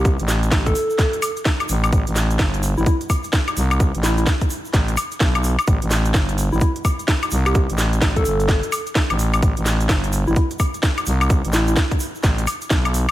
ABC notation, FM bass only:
X:1
M:4/4
L:1/16
Q:"Swing 16ths" 1/4=128
K:Am
V:1 name="FM bass" clef=bass
C,, A,,,3 A,,,2 z8 A,,,2 | A,,, A,,,3 G,,,3 A,,, z6 C,,2- | C,, A,,,3 z4 A,,,2 z2 B,,,3 z | A,,, A,,,3 G,,,3 A,,, z6 C,,2- |
C,, A,,,3 A,,, C,, G,,,3 z4 A,,,3 | A,,, A,,,3 G,,,3 A,,, z6 C,,2- | C,, A,,,3 z4 A,,,2 z2 B,,,3 z |]